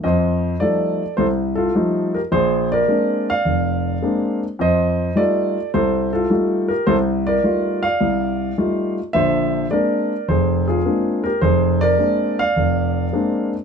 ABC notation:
X:1
M:4/4
L:1/8
Q:"Swing" 1/4=106
K:F
V:1 name="Grand piano"
[c_e]2 [Ad]2 [Ac] [FA]2 [GB] | [_Ac] [Bd]2 [df]4 z | [c_e]2 [Ad]2 [Ac] [FA]2 [GB] | [Ac] [Bd]2 [df]4 z |
[ce]2 [Bd]2 [_Ac] [FA]2 [GB] | [_Ac] [Bd]2 [df]4 z |]
V:2 name="Grand piano"
F,,2 [F,G,A,_E] z C,,2 [F,G,A,E] z | B,,,2 [_A,B,CD] z F,,,2 [A,B,CD] z | F,,2 [G,A,_EF] z C,,2 [G,A,EF] z | C,,2 [G,A,_EF] z C,,2 [G,A,EF] z |
[B,,,D,]2 [_A,B,CD] z F,,,2 [A,B,CD] z | F,,,2 [_A,B,CD] z F,,,2 [A,B,CD] z |]